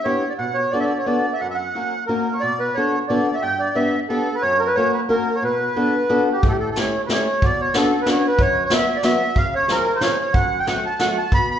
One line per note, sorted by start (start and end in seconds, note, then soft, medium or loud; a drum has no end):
0.04 0.23 B3 medium
0.04 0.23 D4 soft
0.04 0.23 E4 soft
0.04 0.23 G4 medium
0.04 0.29 C#5 medium
0.29 0.33 D5 medium
0.38 0.64 B2 medium
0.38 0.57 F#5 medium
0.54 0.72 C#5 medium
0.71 0.91 B3 soft
0.71 0.91 D4 soft
0.71 0.91 F#4 soft
0.71 0.91 A4 medium
0.71 0.79 D5 medium
0.80 0.98 D5 medium
0.80 0.86 E5 medium
0.98 1.06 C#5 medium
1.06 1.24 B3 medium
1.06 1.24 D4 soft
1.06 1.24 F#4 soft
1.06 1.24 A4 medium
1.06 1.33 D5 medium
1.33 1.41 E5 medium
1.41 1.67 F#2 soft
1.41 1.47 F#5 medium
1.50 1.57 E5 medium
1.55 2.04 F#5 medium
1.75 1.92 A#3 soft
1.75 1.92 C#4 soft
1.75 1.92 F#4 soft
1.75 1.92 A#4 soft
2.07 2.26 A#3 soft
2.07 2.26 C#4 soft
2.07 2.26 F#4 soft
2.07 2.34 A#4 medium
2.07 2.26 A#4 medium
2.33 2.42 C#5 medium
2.40 2.68 B2 soft
2.40 2.60 D5 medium
2.59 2.77 B4 medium
2.74 2.94 B3 soft
2.74 2.94 D4 soft
2.74 2.94 F#4 soft
2.74 2.94 A4 medium
2.74 2.99 C#5 medium
3.08 3.28 B3 medium
3.08 3.27 D4 soft
3.08 3.28 F#4 soft
3.08 3.28 A4 medium
3.08 3.35 D5 medium
3.34 3.43 E5 medium
3.42 3.68 G2 soft
3.42 3.61 G5 medium
3.59 3.77 D5 medium
3.75 3.94 B3 medium
3.75 3.94 D4 soft
3.75 3.94 G4 soft
3.75 3.94 B4 medium
3.75 4.00 E5 medium
4.09 4.28 B3 soft
4.09 4.27 D4 soft
4.09 4.28 G4 medium
4.09 4.36 A4 medium
4.09 4.28 B4 medium
4.35 4.43 B4 medium
4.42 4.68 F#2 medium
4.42 4.61 C#5 medium
4.60 4.69 A#4 medium
4.67 4.76 B4 medium
4.75 4.94 A#3 soft
4.75 4.94 C#4 soft
4.75 4.95 F#4 medium
4.75 4.94 A#4 soft
4.75 4.92 C#5 medium
4.93 5.01 B4 medium
5.09 5.27 A#3 medium
5.09 5.27 C#4 soft
5.09 5.27 F#4 soft
5.09 5.36 A#4 medium
5.09 5.27 A#4 medium
5.35 5.44 C#5 medium
5.42 5.68 B2 medium
5.42 6.24 B4 medium
5.76 5.94 B3 medium
5.76 5.94 D4 soft
5.76 5.94 F#4 medium
5.76 5.94 A4 medium
6.09 6.28 B3 medium
6.09 6.28 D4 medium
6.09 6.28 F#4 medium
6.09 6.28 A4 medium
6.32 6.47 G4 medium
6.43 6.69 A2 medium
6.43 kick medium
6.43 closed hi-hat soft
6.48 6.57 G4 medium
6.48 6.53 A4 medium
6.59 6.70 A4 medium
6.71 6.78 A4 medium
6.76 6.95 A3 medium
6.76 6.94 C#4 soft
6.76 6.94 E4 soft
6.76 6.94 G4 medium
6.76 7.02 C#5 medium
6.76 snare medium
6.76 closed hi-hat soft
7.06 7.26 A3 medium
7.06 7.27 C#4 soft
7.06 7.26 E4 medium
7.06 7.27 G4 medium
7.06 7.09 B4 medium
7.06 snare medium
7.06 closed hi-hat soft
7.13 7.45 C#5 medium
7.42 7.67 B2 medium
7.42 7.61 D5 medium
7.42 kick medium
7.42 closed hi-hat soft
7.61 7.76 C#5 medium
7.74 7.92 B3 medium
7.74 7.92 C#4 soft
7.74 7.92 D4 medium
7.74 7.92 F#4 medium
7.74 8.01 A4 medium
7.74 snare medium
7.74 closed hi-hat soft
8.02 8.09 B4 medium
8.06 8.23 B3 medium
8.06 8.24 C#4 soft
8.06 8.24 D4 medium
8.06 8.24 F#4 medium
8.06 snare medium
8.06 closed hi-hat soft
8.11 8.27 C#5 medium
8.27 8.42 B4 medium
8.38 8.63 F#2 medium
8.38 8.64 C#5 medium
8.38 kick medium
8.38 closed hi-hat soft
8.65 8.73 C#5 medium
8.70 8.88 F#3 medium
8.70 8.88 B3 soft
8.70 8.88 C#4 soft
8.70 8.88 F#4 medium
8.70 8.98 E5 medium
8.70 snare medium
8.70 closed hi-hat soft
8.96 9.04 D5 medium
9.03 9.21 F#3 medium
9.03 9.21 B3 medium
9.03 9.21 C#4 medium
9.03 9.21 F#4 medium
9.03 9.38 E5 medium
9.03 snare medium
9.03 closed hi-hat soft
9.36 9.61 C#3 medium
9.36 9.54 F5 medium
9.36 kick medium
9.36 closed hi-hat soft
9.55 9.70 C#5 medium
9.68 9.86 F3 medium
9.68 9.86 G#3 medium
9.68 9.86 C#4 medium
9.68 9.86 F4 medium
9.68 9.94 A#4 medium
9.68 snare medium
9.68 closed hi-hat soft
9.95 9.98 A#4 medium
9.95 10.02 C5 medium
10.01 10.18 F3 medium
10.01 10.18 G#3 soft
10.01 10.19 C#4 medium
10.01 10.18 F4 medium
10.01 10.18 C#5 medium
10.01 snare medium
10.01 closed hi-hat soft
10.20 10.34 C#5 medium
10.33 10.59 F#2 medium
10.33 10.60 F#5 medium
10.33 kick medium
10.33 closed hi-hat soft
10.60 10.67 G5 medium
10.67 10.84 F#3 soft
10.67 10.84 A3 soft
10.67 10.84 C#4 soft
10.67 10.84 F#4 medium
10.67 10.85 F#5 medium
10.67 snare medium
10.67 closed hi-hat soft
10.85 11.01 A5 medium
10.99 11.17 F#3 medium
10.99 11.17 A3 soft
10.99 11.17 C#4 medium
10.99 11.17 F#4 medium
10.99 11.17 F#5 medium
10.99 snare medium
10.99 closed hi-hat medium
11.18 11.33 A5 medium
11.32 11.57 B2 medium
11.32 11.49 B5 loud
11.32 kick medium
11.32 closed hi-hat soft
11.51 11.59 B5 medium